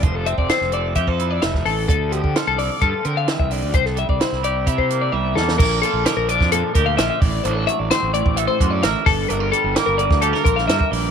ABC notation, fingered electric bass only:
X:1
M:4/4
L:1/16
Q:1/4=130
K:Dm
V:1 name="Fingered electric bass" clef=bass
F,,,3 F,,, z F,,,3 F,,4 F,,,2 A,,,2 | D,,3 D, z C,,2 z G,, z D,2 z C,,2 D,, | C,,3 C,, z C,,3 C,4 C,,2 E,,2 | B,,,2 z B,,, z B,,,2 F,,2 z D,,2 B,,, z A,,,2 |
A,,,2 z A,,, z A,,,2 A,,,2 z ^F,,2 A,,, z G,,,2 | G,,,2 z G,,, z G,,,2 D,,2 z B,,,2 G,, z B,,,2 |]